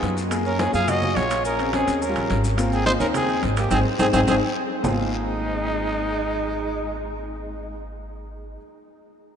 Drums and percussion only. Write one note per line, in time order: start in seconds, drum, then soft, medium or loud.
0.03 high conga medium
0.03 high timbale medium
0.03 short guiro medium
0.03 maracas soft
0.17 short guiro medium
0.17 maracas medium
0.31 high conga soft
0.31 high timbale medium
0.31 long guiro medium
0.31 maracas medium
0.45 high conga soft
0.45 maracas soft
0.59 high conga medium
0.59 high timbale medium
0.59 short guiro medium
0.59 maracas soft
0.74 short guiro medium
0.74 maracas medium
0.88 high conga soft
0.88 low conga medium
0.88 high timbale medium
0.88 long guiro medium
0.88 maracas medium
1.02 high conga soft
1.02 low conga medium
1.02 maracas soft
1.16 high conga medium
1.16 high timbale medium
1.16 low timbale medium
1.16 short guiro medium
1.16 maracas soft
1.30 high conga soft
1.30 high timbale loud
1.30 short guiro medium
1.30 maracas medium
1.45 high conga soft
1.45 long guiro medium
1.45 maracas medium
1.59 high conga soft
1.59 high timbale medium
1.59 maracas soft
1.73 high conga medium
1.73 high timbale medium
1.73 short guiro medium
1.73 maracas soft
1.87 high conga soft
1.87 high timbale medium
1.87 short guiro medium
1.87 maracas medium
2.02 high conga soft
2.02 long guiro medium
2.02 maracas medium
2.16 high conga soft
2.16 high timbale medium
2.16 maracas soft
2.30 high conga medium
2.30 high timbale medium
2.30 short guiro medium
2.30 maracas soft
2.44 short guiro medium
2.44 maracas medium
2.58 high conga soft
2.58 high timbale medium
2.58 long guiro medium
2.58 maracas medium
2.72 high conga soft
2.72 maracas soft
2.86 high conga loud
2.86 high timbale medium
2.86 short guiro medium
2.86 maracas soft
3.00 short guiro medium
3.00 maracas medium
3.14 high conga soft
3.14 low conga medium
3.14 high timbale loud
3.14 long guiro medium
3.14 maracas medium
3.28 high conga soft
3.28 maracas soft
3.43 high conga medium
3.43 high timbale medium
3.43 short guiro medium
3.43 maracas soft
3.57 high conga soft
3.57 high timbale loud
3.57 short guiro medium
3.57 maracas medium
3.71 high conga loud
3.71 high timbale medium
3.71 long guiro medium
3.71 maracas medium
3.99 high conga loud
3.99 high timbale loud
3.99 long guiro loud
3.99 maracas medium
4.13 high conga loud
4.13 high timbale loud
4.13 long guiro medium
4.13 maracas medium
4.28 high conga medium
4.28 high timbale loud
4.28 long guiro medium
4.28 maracas loud
4.84 low conga medium
4.84 low timbale loud
4.84 long guiro medium
4.84 maracas medium